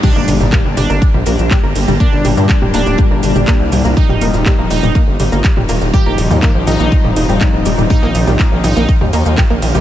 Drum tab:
CC |x---------------|----------------|----------------|----------------|
RD |xxx-x-x-x-x-x---|xxx-x-x-x-x-x-x-|xxx-x-x-x-x-x---|xxx-x-x-x-x-x-x-|
HH |--o---o---o---o-|--o---o---o---o-|--o---o---o---o-|--o---o---o---o-|
SH |x-xxx-xxx-xxx-xx|x-xxx-xxx-xxx-xx|x-xxx-xxx-xxx-xx|x-xxx-xxx-xxx-xx|
CP |----x-------x---|----x-------x---|----x-------x---|----x-------x---|
SD |---oo-------o-o-|----o-------o---|---oo-------o-o-|----o-------o---|
T2 |o--o--o--o--o--o|--o--o--o--o--o-|-o--o--o--o--o--|o--o--o--o--o--o|
BD |o---o---o---o---|o---o---o---o---|o---o---o---o---|o---o---o---o---|

CC |----------------|
RD |xxx-x-x-x-x-x-x-|
HH |--o---o---o---o-|
SH |x-xxx-xxx-xxx-xx|
CP |----x-------x---|
SD |---oo-------o-o-|
T2 |o--o--o--o--o--o|
BD |o---o---o---o---|